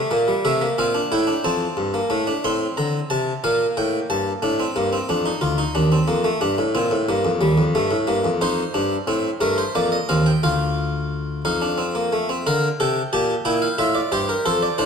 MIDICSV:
0, 0, Header, 1, 2, 480
1, 0, Start_track
1, 0, Key_signature, -3, "major"
1, 0, Tempo, 664452
1, 319, Time_signature, 6, 3, 24, 8
1, 5597, Tempo, 669643
1, 6073, Key_signature, -2, "major"
1, 10692, End_track
2, 0, Start_track
2, 0, Title_t, "Harpsichord"
2, 0, Program_c, 0, 6
2, 0, Note_on_c, 0, 57, 66
2, 0, Note_on_c, 0, 74, 83
2, 75, Note_off_c, 0, 57, 0
2, 78, Note_on_c, 0, 58, 65
2, 82, Note_on_c, 0, 46, 65
2, 195, Note_off_c, 0, 58, 0
2, 201, Note_on_c, 0, 55, 60
2, 231, Note_off_c, 0, 46, 0
2, 299, Note_off_c, 0, 74, 0
2, 317, Note_off_c, 0, 55, 0
2, 323, Note_on_c, 0, 48, 69
2, 324, Note_on_c, 0, 57, 55
2, 325, Note_on_c, 0, 76, 62
2, 439, Note_off_c, 0, 57, 0
2, 444, Note_on_c, 0, 58, 54
2, 472, Note_off_c, 0, 48, 0
2, 473, Note_off_c, 0, 76, 0
2, 559, Note_off_c, 0, 58, 0
2, 566, Note_on_c, 0, 46, 57
2, 568, Note_on_c, 0, 77, 54
2, 569, Note_on_c, 0, 60, 53
2, 681, Note_off_c, 0, 60, 0
2, 683, Note_on_c, 0, 62, 50
2, 713, Note_off_c, 0, 46, 0
2, 715, Note_off_c, 0, 77, 0
2, 798, Note_off_c, 0, 62, 0
2, 807, Note_on_c, 0, 79, 59
2, 808, Note_on_c, 0, 45, 65
2, 808, Note_on_c, 0, 64, 55
2, 918, Note_on_c, 0, 62, 53
2, 921, Note_off_c, 0, 64, 0
2, 954, Note_off_c, 0, 79, 0
2, 955, Note_off_c, 0, 45, 0
2, 1036, Note_off_c, 0, 62, 0
2, 1043, Note_on_c, 0, 81, 57
2, 1044, Note_on_c, 0, 41, 58
2, 1044, Note_on_c, 0, 60, 53
2, 1193, Note_off_c, 0, 41, 0
2, 1279, Note_on_c, 0, 43, 62
2, 1393, Note_off_c, 0, 60, 0
2, 1401, Note_on_c, 0, 58, 53
2, 1429, Note_off_c, 0, 43, 0
2, 1516, Note_on_c, 0, 57, 54
2, 1517, Note_on_c, 0, 45, 60
2, 1519, Note_off_c, 0, 58, 0
2, 1637, Note_off_c, 0, 57, 0
2, 1641, Note_on_c, 0, 62, 57
2, 1668, Note_off_c, 0, 45, 0
2, 1744, Note_off_c, 0, 81, 0
2, 1759, Note_off_c, 0, 62, 0
2, 1765, Note_on_c, 0, 60, 58
2, 1766, Note_on_c, 0, 45, 62
2, 1766, Note_on_c, 0, 84, 74
2, 1915, Note_off_c, 0, 45, 0
2, 1915, Note_off_c, 0, 84, 0
2, 2003, Note_on_c, 0, 82, 70
2, 2006, Note_on_c, 0, 50, 57
2, 2153, Note_off_c, 0, 82, 0
2, 2155, Note_off_c, 0, 50, 0
2, 2240, Note_on_c, 0, 81, 71
2, 2243, Note_on_c, 0, 48, 61
2, 2391, Note_off_c, 0, 81, 0
2, 2393, Note_off_c, 0, 48, 0
2, 2465, Note_off_c, 0, 60, 0
2, 2484, Note_on_c, 0, 46, 59
2, 2485, Note_on_c, 0, 58, 60
2, 2485, Note_on_c, 0, 77, 67
2, 2633, Note_off_c, 0, 46, 0
2, 2634, Note_off_c, 0, 77, 0
2, 2725, Note_on_c, 0, 45, 59
2, 2725, Note_on_c, 0, 79, 75
2, 2874, Note_off_c, 0, 45, 0
2, 2874, Note_off_c, 0, 79, 0
2, 2961, Note_on_c, 0, 81, 74
2, 2962, Note_on_c, 0, 43, 62
2, 3111, Note_off_c, 0, 43, 0
2, 3111, Note_off_c, 0, 81, 0
2, 3183, Note_off_c, 0, 58, 0
2, 3196, Note_on_c, 0, 45, 75
2, 3197, Note_on_c, 0, 62, 66
2, 3317, Note_off_c, 0, 62, 0
2, 3320, Note_on_c, 0, 60, 62
2, 3347, Note_off_c, 0, 45, 0
2, 3437, Note_on_c, 0, 43, 67
2, 3438, Note_off_c, 0, 60, 0
2, 3438, Note_on_c, 0, 58, 63
2, 3557, Note_off_c, 0, 58, 0
2, 3559, Note_on_c, 0, 60, 60
2, 3588, Note_off_c, 0, 43, 0
2, 3677, Note_off_c, 0, 60, 0
2, 3678, Note_on_c, 0, 41, 76
2, 3680, Note_on_c, 0, 62, 69
2, 3797, Note_off_c, 0, 62, 0
2, 3797, Note_on_c, 0, 63, 64
2, 3827, Note_off_c, 0, 41, 0
2, 3910, Note_on_c, 0, 65, 64
2, 3911, Note_on_c, 0, 38, 75
2, 3915, Note_off_c, 0, 63, 0
2, 4031, Note_off_c, 0, 65, 0
2, 4032, Note_on_c, 0, 63, 71
2, 4062, Note_off_c, 0, 38, 0
2, 4152, Note_off_c, 0, 63, 0
2, 4152, Note_on_c, 0, 62, 74
2, 4155, Note_on_c, 0, 39, 77
2, 4272, Note_off_c, 0, 62, 0
2, 4275, Note_on_c, 0, 60, 64
2, 4305, Note_off_c, 0, 39, 0
2, 4389, Note_on_c, 0, 58, 70
2, 4391, Note_on_c, 0, 41, 75
2, 4393, Note_off_c, 0, 60, 0
2, 4510, Note_off_c, 0, 58, 0
2, 4510, Note_on_c, 0, 57, 65
2, 4541, Note_off_c, 0, 41, 0
2, 4630, Note_off_c, 0, 57, 0
2, 4631, Note_on_c, 0, 62, 86
2, 4632, Note_on_c, 0, 43, 76
2, 4750, Note_off_c, 0, 43, 0
2, 4756, Note_on_c, 0, 45, 67
2, 4781, Note_off_c, 0, 62, 0
2, 4872, Note_off_c, 0, 45, 0
2, 4874, Note_on_c, 0, 60, 77
2, 4875, Note_on_c, 0, 46, 68
2, 4991, Note_off_c, 0, 46, 0
2, 4994, Note_on_c, 0, 45, 64
2, 5023, Note_off_c, 0, 60, 0
2, 5111, Note_off_c, 0, 45, 0
2, 5119, Note_on_c, 0, 43, 74
2, 5119, Note_on_c, 0, 58, 78
2, 5233, Note_off_c, 0, 43, 0
2, 5235, Note_on_c, 0, 41, 65
2, 5266, Note_off_c, 0, 58, 0
2, 5351, Note_off_c, 0, 41, 0
2, 5351, Note_on_c, 0, 39, 65
2, 5353, Note_on_c, 0, 55, 73
2, 5469, Note_off_c, 0, 39, 0
2, 5473, Note_on_c, 0, 41, 71
2, 5503, Note_off_c, 0, 55, 0
2, 5590, Note_off_c, 0, 41, 0
2, 5599, Note_on_c, 0, 57, 81
2, 5600, Note_on_c, 0, 43, 69
2, 5711, Note_on_c, 0, 45, 67
2, 5713, Note_off_c, 0, 43, 0
2, 5745, Note_off_c, 0, 57, 0
2, 5828, Note_off_c, 0, 45, 0
2, 5830, Note_on_c, 0, 58, 79
2, 5832, Note_on_c, 0, 43, 69
2, 5949, Note_off_c, 0, 43, 0
2, 5954, Note_on_c, 0, 41, 60
2, 5980, Note_off_c, 0, 58, 0
2, 6066, Note_off_c, 0, 41, 0
2, 6074, Note_on_c, 0, 41, 74
2, 6075, Note_on_c, 0, 63, 89
2, 6076, Note_on_c, 0, 72, 73
2, 6222, Note_off_c, 0, 41, 0
2, 6223, Note_off_c, 0, 63, 0
2, 6310, Note_on_c, 0, 62, 75
2, 6312, Note_on_c, 0, 43, 65
2, 6459, Note_off_c, 0, 62, 0
2, 6460, Note_off_c, 0, 43, 0
2, 6548, Note_on_c, 0, 45, 68
2, 6548, Note_on_c, 0, 60, 74
2, 6697, Note_off_c, 0, 45, 0
2, 6697, Note_off_c, 0, 60, 0
2, 6771, Note_off_c, 0, 72, 0
2, 6785, Note_on_c, 0, 43, 61
2, 6787, Note_on_c, 0, 70, 64
2, 6788, Note_on_c, 0, 57, 69
2, 6906, Note_off_c, 0, 70, 0
2, 6909, Note_on_c, 0, 72, 63
2, 6936, Note_off_c, 0, 43, 0
2, 6938, Note_off_c, 0, 57, 0
2, 7027, Note_off_c, 0, 72, 0
2, 7033, Note_on_c, 0, 58, 71
2, 7036, Note_on_c, 0, 41, 65
2, 7036, Note_on_c, 0, 74, 62
2, 7151, Note_off_c, 0, 74, 0
2, 7155, Note_on_c, 0, 75, 61
2, 7182, Note_off_c, 0, 58, 0
2, 7184, Note_off_c, 0, 41, 0
2, 7270, Note_off_c, 0, 75, 0
2, 7275, Note_on_c, 0, 77, 65
2, 7277, Note_on_c, 0, 60, 70
2, 7279, Note_on_c, 0, 39, 60
2, 7391, Note_off_c, 0, 77, 0
2, 7400, Note_on_c, 0, 79, 60
2, 7425, Note_off_c, 0, 60, 0
2, 7427, Note_off_c, 0, 39, 0
2, 7514, Note_off_c, 0, 79, 0
2, 7521, Note_on_c, 0, 38, 64
2, 7523, Note_on_c, 0, 65, 70
2, 7523, Note_on_c, 0, 77, 68
2, 8224, Note_off_c, 0, 38, 0
2, 8224, Note_off_c, 0, 65, 0
2, 8224, Note_off_c, 0, 77, 0
2, 8250, Note_on_c, 0, 63, 57
2, 8251, Note_on_c, 0, 41, 55
2, 8252, Note_on_c, 0, 77, 58
2, 8364, Note_off_c, 0, 63, 0
2, 8370, Note_on_c, 0, 62, 60
2, 8484, Note_off_c, 0, 62, 0
2, 8485, Note_on_c, 0, 60, 61
2, 8602, Note_off_c, 0, 60, 0
2, 8610, Note_on_c, 0, 58, 57
2, 8725, Note_off_c, 0, 58, 0
2, 8735, Note_on_c, 0, 57, 57
2, 8848, Note_off_c, 0, 57, 0
2, 8855, Note_on_c, 0, 60, 54
2, 8950, Note_off_c, 0, 41, 0
2, 8951, Note_off_c, 0, 77, 0
2, 8968, Note_off_c, 0, 60, 0
2, 8978, Note_on_c, 0, 50, 70
2, 8980, Note_on_c, 0, 70, 83
2, 8980, Note_on_c, 0, 77, 69
2, 9124, Note_off_c, 0, 50, 0
2, 9125, Note_off_c, 0, 70, 0
2, 9125, Note_off_c, 0, 77, 0
2, 9218, Note_on_c, 0, 69, 78
2, 9219, Note_on_c, 0, 48, 63
2, 9221, Note_on_c, 0, 79, 66
2, 9363, Note_off_c, 0, 69, 0
2, 9364, Note_off_c, 0, 48, 0
2, 9365, Note_off_c, 0, 79, 0
2, 9454, Note_on_c, 0, 67, 83
2, 9454, Note_on_c, 0, 81, 67
2, 9455, Note_on_c, 0, 46, 64
2, 9599, Note_off_c, 0, 67, 0
2, 9599, Note_off_c, 0, 81, 0
2, 9600, Note_off_c, 0, 46, 0
2, 9685, Note_on_c, 0, 79, 73
2, 9686, Note_on_c, 0, 46, 70
2, 9688, Note_on_c, 0, 64, 87
2, 9800, Note_off_c, 0, 79, 0
2, 9806, Note_on_c, 0, 77, 70
2, 9833, Note_off_c, 0, 46, 0
2, 9834, Note_off_c, 0, 64, 0
2, 9920, Note_off_c, 0, 77, 0
2, 9924, Note_on_c, 0, 45, 73
2, 9924, Note_on_c, 0, 65, 85
2, 9924, Note_on_c, 0, 76, 74
2, 10038, Note_off_c, 0, 76, 0
2, 10040, Note_on_c, 0, 74, 73
2, 10070, Note_off_c, 0, 65, 0
2, 10071, Note_off_c, 0, 45, 0
2, 10155, Note_off_c, 0, 74, 0
2, 10163, Note_on_c, 0, 43, 71
2, 10164, Note_on_c, 0, 72, 76
2, 10166, Note_on_c, 0, 67, 93
2, 10276, Note_off_c, 0, 72, 0
2, 10287, Note_on_c, 0, 70, 71
2, 10308, Note_off_c, 0, 43, 0
2, 10310, Note_off_c, 0, 67, 0
2, 10397, Note_off_c, 0, 70, 0
2, 10405, Note_on_c, 0, 69, 105
2, 10406, Note_on_c, 0, 41, 78
2, 10407, Note_on_c, 0, 72, 85
2, 10516, Note_off_c, 0, 72, 0
2, 10527, Note_on_c, 0, 74, 75
2, 10549, Note_off_c, 0, 41, 0
2, 10549, Note_off_c, 0, 69, 0
2, 10635, Note_off_c, 0, 74, 0
2, 10639, Note_on_c, 0, 72, 73
2, 10642, Note_on_c, 0, 45, 75
2, 10642, Note_on_c, 0, 62, 88
2, 10692, Note_off_c, 0, 45, 0
2, 10692, Note_off_c, 0, 62, 0
2, 10692, Note_off_c, 0, 72, 0
2, 10692, End_track
0, 0, End_of_file